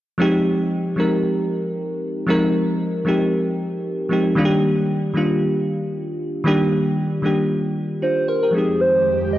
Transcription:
0.18 0.82 F3 loud
0.18 0.83 G#3 medium
0.18 0.83 C4 medium
0.18 0.83 D#4 medium
0.18 0.84 G4 loud
0.96 1.81 F3 medium
0.96 1.81 G#3 medium
0.96 1.82 C4 medium
0.96 1.82 D#4 medium
0.96 1.83 A#4 medium
2.27 2.91 F3 loud
2.27 2.91 G#3 loud
2.27 2.92 C4 medium
2.27 2.92 D#4 medium
2.27 2.93 A#4 loud
3.05 3.89 F3 medium
3.05 3.90 G#3 medium
3.05 3.90 C4 medium
3.05 3.91 D#4 medium
3.05 3.91 G4 medium
4.09 4.31 F3 medium
4.09 4.32 G#3 medium
4.09 4.32 C4 medium
4.09 4.33 D#4 medium
4.09 4.33 G4 medium
4.35 5.00 D#3 loud
4.35 5.00 G3 loud
4.35 5.00 A#3 loud
4.35 5.01 D4 loud
4.35 4.45 F4 medium
4.45 5.05 G4 loud
5.14 5.98 D#3 medium
5.14 5.99 G3 medium
5.14 5.99 A#3 medium
5.14 6.00 D4 medium
5.14 6.00 F4 medium
6.44 7.08 D#3 loud
6.44 7.09 G3 medium
6.44 7.09 A#3 medium
6.44 7.10 D4 loud
6.44 7.10 G4 loud
7.22 8.07 D#3 medium
7.22 8.07 G3 medium
7.22 8.08 A#3 medium
7.22 7.76 D4 medium
7.22 7.77 G4 medium
8.02 8.27 D4 medium
8.02 8.27 F4 medium
8.02 8.30 C5 loud
8.28 8.54 A#4 medium
8.28 8.42 C5 medium
8.43 8.57 G4 medium
8.43 8.67 A#4 medium
8.51 9.38 F2 medium
8.51 9.38 D#3 medium
8.51 9.38 F3 medium
8.51 9.38 G#3 medium
8.51 9.38 C4 medium
8.51 9.38 G4 medium
8.55 9.38 D#4 medium
8.55 9.38 G4 medium
8.55 8.82 G#4 loud
8.81 9.33 C5 loud
9.33 9.38 D#5 loud

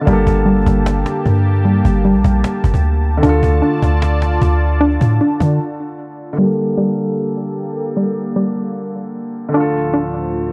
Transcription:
0.00 3.16 D3 medium
0.00 3.19 A5 loud
0.05 0.26 G1 loud
0.05 0.44 G3 medium
0.05 3.18 A#3 medium
0.05 3.20 A#3 medium
0.05 3.20 G4 medium
0.05 cajon bass loud
0.13 3.22 A4 medium
0.20 cajon slap soft
0.27 0.65 G1 loud
0.27 cajon bass loud
0.46 1.64 G3 medium
0.46 cajon slap soft
0.56 cajon slap soft
0.61 cajon slap soft
0.66 1.04 G1 loud
0.66 cajon bass loud
0.86 cajon slap loud
0.96 cajon slap soft
1.06 cajon slap medium
1.16 cajon slap soft
1.26 1.82 G2 loud
1.26 cajon bass loud
1.36 cajon slap soft
1.45 cajon slap soft
1.55 cajon slap soft
1.65 2.04 G3 medium
1.65 cajon slap soft
1.75 cajon slap soft
1.85 2.16 G1 loud
1.85 cajon bass loud
2.04 3.23 G3 medium
2.04 cajon slap soft
2.14 2.24 A#1 loud
2.14 cajon slap soft
2.19 cajon slap soft
2.24 2.43 A#1 loud
2.24 cajon bass loud
2.44 cajon slap loud
2.54 cajon slap soft
2.64 2.73 G1 loud
2.64 cajon bass loud
2.74 3.21 D2 loud
2.74 cajon bass medium
2.84 cajon slap soft
2.94 cajon slap soft
3.03 cajon slap soft
3.13 cajon slap soft
3.17 6.31 D3 medium
3.17 6.34 A3 medium
3.23 3.42 D2 loud
3.23 3.61 D4 medium
3.23 6.36 F4 medium
3.23 6.36 D5 medium
3.23 6.36 A5 loud
3.23 cajon bass loud
3.29 6.38 A4 medium
3.43 3.62 D2 loud
3.43 cajon bass loud
3.62 4.79 D4 medium
3.62 cajon slap soft
3.72 cajon slap soft
3.77 cajon slap soft
3.82 4.39 D2 loud
3.82 cajon bass loud
4.02 cajon slap loud
4.22 cajon slap medium
4.32 cajon slap soft
4.41 4.98 D2 loud
4.41 cajon bass loud
4.61 cajon slap soft
4.71 cajon slap soft
4.81 5.20 D4 loud
4.81 cajon slap soft
4.91 cajon slap soft
5.01 5.20 A2 loud
5.01 cajon bass medium
5.20 6.39 D4 medium
5.20 cajon slap soft
5.30 cajon slap soft
5.40 5.59 D3 loud
5.40 cajon bass loud
6.33 9.47 D3 medium
6.33 9.50 A#3 medium
6.38 6.76 G3 medium
6.38 9.51 A#3 medium
6.38 9.51 G4 medium
6.38 9.52 G4 medium
6.38 9.51 A4 medium
6.38 cajon slap soft
6.45 9.54 A4 medium
6.45 cajon slap soft
6.52 cajon slap soft
6.77 7.95 G3 medium
7.97 8.35 G3 medium
8.36 9.55 G3 medium
9.49 10.53 D3 medium
9.49 10.53 A3 medium
9.54 10.53 D2 medium
9.54 10.53 A2 medium
9.54 10.53 F3 medium
9.54 9.92 D4 medium
9.54 10.53 F4 medium
9.60 10.53 A4 medium
9.94 10.53 D4 medium

